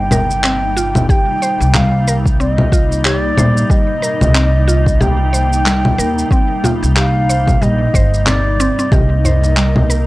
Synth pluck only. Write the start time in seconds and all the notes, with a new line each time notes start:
Already playing: G3
0.12 A#4
0.45 C4
0.77 F4
1.10 G4
1.42 C5
1.75 G3
2.08 A#4
2.40 C4
2.72 F4
3.05 G4
3.38 C5
3.70 G3
4.02 A#4
4.35 C4
4.68 F4
5.01 G4
5.33 C5
5.66 G3
5.98 A#4
6.32 C4
6.64 F4
6.96 G4
7.29 C5
7.62 G3
7.95 C5
8.27 C4
8.60 C4
8.79 C4
8.92 G4
9.25 C5
9.57 G3
9.90 A#4